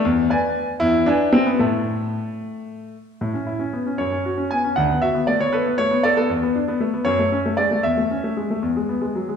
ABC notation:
X:1
M:6/8
L:1/16
Q:3/8=77
K:Am
V:1 name="Grand piano"
z6 E2 D2 C B, | A,8- A,2 z2 | [K:A] z6 c4 g2 | f2 e2 d c B2 c2 d A |
z6 c4 d2 | e6 z6 |]
V:2 name="Grand piano"
E,,2 [Bd^g]4 E,,2 [Beg]4 | [A,,ea]6 z6 | [K:A] A,, C E C B, C F,, C F C B, C | D,, B, F B, A, B, A B, A, B, A B, |
E,, B, D B, A, B, F,, A, C A, G, A, | E,, A, C A, G, A, E,, G, B, G, F, G, |]